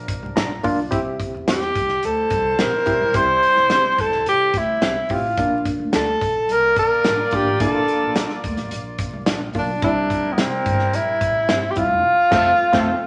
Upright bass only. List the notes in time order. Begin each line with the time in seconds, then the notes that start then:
Already playing: A#1
0.23 C2
0.36 A#1
0.64 B1
0.92 C2
1.34 E2
1.49 E2
1.76 C2
2.04 D2
2.31 C2
2.60 A#1
2.87 A#1
3.01 B1
3.15 C2
3.58 C2
3.99 E2
4.12 C2
4.26 C3
4.54 D2
4.82 C2
5.10 A1
5.38 A#1
5.80 D2
5.93 D2
6.22 A#1
6.49 C2
6.77 A#1
7.05 A1
7.33 G#1
7.47 A1
7.60 A#1
8.03 A#1
8.44 D2
8.58 A1
8.72 A#1
9.13 C2
9.27 A#1
9.55 B1
9.82 C2
10.25 E2
10.38 C3
10.66 G1
10.93 A#1
11.21 A1
11.49 G1
11.77 D#1
11.90 E1
12.32 F1
12.73 F1